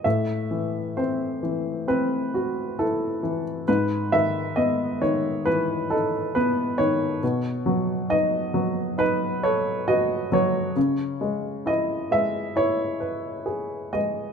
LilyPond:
<<
  \new Staff \with { instrumentName = "Upright piano" } { \time 4/4 \key a \lydian \tempo 4 = 67 e''4 c''4 b'4 a'8. r16 | b'8 e''8 dis''8 cis''8 b'8 a'8 b'8 cis''8~ | cis''4 dis''4 b'8 cis''8 dis''8 cis''8~ | cis''4 dis''8 e''8 cis''4. dis''8 | }
  \new Staff \with { instrumentName = "Upright piano" } { \clef bass \time 4/4 \key a \lydian a,8 e8 c'8 e8 c'8 fis'8 e'8 e8 | gis,8 dis8 b8 dis8 e8 dis'8 b8 dis8 | b,8 fis8 dis'8 fis8 dis'8 a'8 fis'8 fis8 | cis8 gis8 e'8 gis8 e'8 b'8 gis'8 gis8 | }
>>